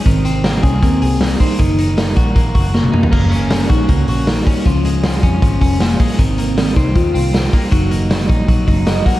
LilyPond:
<<
  \new Staff \with { instrumentName = "Soft synth lead" } { \time 4/4 \key aes \mixolydian \tempo 4 = 157 c'4. des'8 c'4. ees'8 | ees'4. r4. bes4 | des'4. ees'8 des'8 des'8 ees'4 | des'4. des'4. bes4 |
c'4. ees'8 f'4. r8 | ees'2. ees''8 ges''8 | }
  \new Staff \with { instrumentName = "Clean electric guitar" } { \time 4/4 \key aes \mixolydian ees8 c'8 bes8 aes'8 bes8 aes'8 bes8 c'8 | ees8 ees'8 bes8 ges'8 bes8 ges'8 bes8 ees'8 | bes8 des'8 bes8 ges'8 bes8 ges'8 bes8 des'8 | f8 aes8 f8 des'8 f8 des'8 f8 aes8 |
ees8 bes8 ees8 c'8 ees8 c'8 ees8 bes8 | ges8 bes8 ges8 ees'8 ges8 ees'8 ges8 bes8 | }
  \new Staff \with { instrumentName = "Fingered electric bass" } { \clef bass \time 4/4 \key aes \mixolydian aes,,4. c,8 ees,8 c,4 r8 | ges,,4. bes,,8 bes,,8 ges,,4 r8 | ges,,4. bes,,8 des,8 bes,,4 r8 | des,4. f,8 aes,,8 f,,4 r8 |
aes,,4. c,8 ees,8 c,4 r8 | ges,,4. bes,,8 bes,,8 ges,,4 r8 | }
  \new DrumStaff \with { instrumentName = "Drums" } \drummode { \time 4/4 <hho hhp bd>8 <hho hhp>8 <hho hhp sn>8 <hho hhp bd sn>8 <hho hhp bd>8 <hho hhp>8 <hho hhp sn>8 <hho hhp bd>8 | <hho hhp bd>8 <hho hhp>8 <hho hhp sn>8 <hho hhp bd>8 <hho hhp bd>8 <hho hhp bd>8 sn16 tommh16 toml16 tomfh16 | <cymc bd>8 <hho hhp>8 <hho hhp sn>8 <hho hhp bd sn>8 <hho hhp bd>8 <hho hhp>8 <hho hhp sn>8 <hho hhp bd>8 | <hho hhp bd>8 <hho hhp>8 <hho hhp sn>8 <hho hhp bd>8 <hho hhp bd>8 <hho hhp bd>8 <hho hhp sn>8 <hho hhp bd>8 |
<hho hhp bd>8 <hho hhp>8 <hho hhp sn>8 <hho hhp bd sn>8 <hho hhp bd>8 <hho hhp>8 <hho hhp sn>8 <hho hhp bd>8 | <hho hhp bd>8 <hho hhp>8 <hho hhp sn>8 <hho hhp bd>8 <hho hhp bd>8 <hho hhp bd>8 <hho hhp sn>8 <hho hhp bd>8 | }
>>